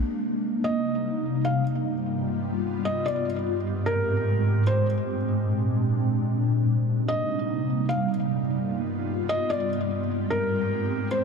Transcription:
<<
  \new Staff \with { instrumentName = "Felt piano" } { \time 4/4 \key c \minor \tempo 4 = 149 r4. ees''2 f''8 | r2. ees''8 d''8 | r4. bes'2 c''8 | r1 |
r4. ees''2 f''8 | r2. ees''8 d''8 | r4. bes'2 c''8 | }
  \new Staff \with { instrumentName = "Ambient pad" } { \time 4/4 \key c \minor << { <c bes ees'>1 | <g, b f'>1 | <aes, c' g'>1 | <bes, c' d'>1 |
<c bes ees'>1 | <g, b f'>1 | <aes, c' g'>1 | } \\ { g1 | g1 | aes1~ | aes1 |
g1~ | g1 | aes1 | } >> }
>>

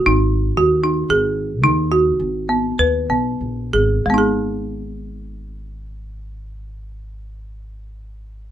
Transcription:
<<
  \new Staff \with { instrumentName = "Marimba" } { \time 7/4 \key gis \minor \tempo 4 = 94 dis'4 fis'8 dis'8 gis'4 dis'8 fis'4 b8 b'8 b4 gis'8 | <gis b dis' gis'>1.~ <gis b dis' gis'>4 | }
  \new Staff \with { instrumentName = "Upright bass" } { \clef bass \time 7/4 \key gis \minor gis,,4 dis,4 gis,,4 dis,4 gis,,4 dis,8 b,,8 ais,,8 gis,,8 | gis,,1.~ gis,,4 | }
>>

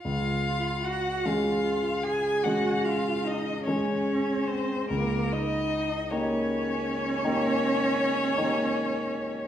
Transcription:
<<
  \new Staff \with { instrumentName = "Violin" } { \time 12/8 \key des \major \tempo 4. = 51 f''4 ges''8 f''4 aes''8 ges''8 f''8 ees''8 des''4 c''8 | bes'8 ees''4 des''1~ des''8 | }
  \new Staff \with { instrumentName = "Cello" } { \time 12/8 \key des \major f'4 ges'8 f'4 aes'8 ges'8 f'8 ees'8 des'4 c'8 | bes8 ees'4 des'1~ des'8 | }
  \new Staff \with { instrumentName = "Grand piano" } { \time 12/8 \key des \major des,4. <aes des' aes'>4. <aes des' aes'>4. <aes des' aes'>4. | des,4. <bes ees' g'>4. <bes ees' g'>4. <bes ees' g'>4. | }
>>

